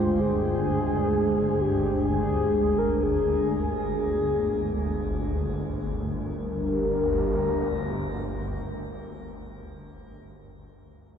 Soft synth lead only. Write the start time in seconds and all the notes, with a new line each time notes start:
Already playing: F4
0.20 G#4
1.61 G4
2.07 G#4
2.78 A#4
3.03 G#4
3.96 G#4
5.89 A#4